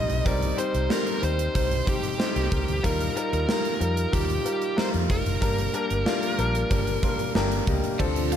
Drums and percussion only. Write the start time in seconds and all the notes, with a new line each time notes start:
0.10 closed hi-hat
0.26 kick, closed hi-hat
0.42 closed hi-hat
0.58 closed hi-hat
0.74 closed hi-hat
0.90 snare
1.07 closed hi-hat
1.23 closed hi-hat
1.39 closed hi-hat
1.55 kick, closed hi-hat
1.71 closed hi-hat
1.87 kick, closed hi-hat
2.03 closed hi-hat
2.20 snare
2.36 closed hi-hat
2.52 kick, closed hi-hat
2.68 closed hi-hat
2.84 kick, closed hi-hat
3.00 closed hi-hat
3.17 closed hi-hat
3.33 closed hi-hat
3.49 snare
3.65 closed hi-hat
3.81 closed hi-hat
3.97 closed hi-hat
4.13 kick, closed hi-hat
4.30 closed hi-hat
4.46 closed hi-hat
4.62 closed hi-hat
4.78 snare
4.94 closed hi-hat
5.10 kick, closed hi-hat
5.26 closed hi-hat
5.42 kick, closed hi-hat
5.58 closed hi-hat
5.74 closed hi-hat
5.90 closed hi-hat
6.06 snare
6.23 closed hi-hat
6.39 closed hi-hat
6.55 closed hi-hat
6.71 kick, closed hi-hat
6.87 closed hi-hat
7.03 kick, closed hi-hat
7.19 closed hi-hat
7.35 snare
7.52 closed hi-hat
7.67 kick, closed hi-hat
7.84 closed hi-hat
8.00 kick, crash
8.16 closed hi-hat
8.32 closed hi-hat